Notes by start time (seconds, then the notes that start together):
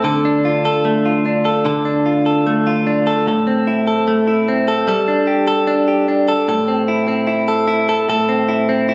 Already playing: A3
0.04 D3 A4
0.25 D4
0.45 F4
0.65 A4
0.85 A3
1.05 F4
1.26 D4
1.45 A4
1.65 D3 A4
1.85 D4
2.06 F4
2.26 A4
2.47 A3
2.67 F4
2.87 D4
3.07 A4
3.27 A2 A4
3.47 C4
3.67 E4
3.87 A4
4.08 A3
4.28 E4
4.48 C4
4.68 A4
4.87 G3 A4
5.08 D4
5.27 G4
5.48 A4
5.67 D4
5.88 G4
6.08 D4
6.28 A4
6.48 A2 A4
6.68 C4
6.88 E4
7.08 C4
7.27 E4
7.48 A4
7.68 E4
7.89 A4
8.08 A2 A4
8.29 C4
8.48 E4
8.69 C4
8.89 E4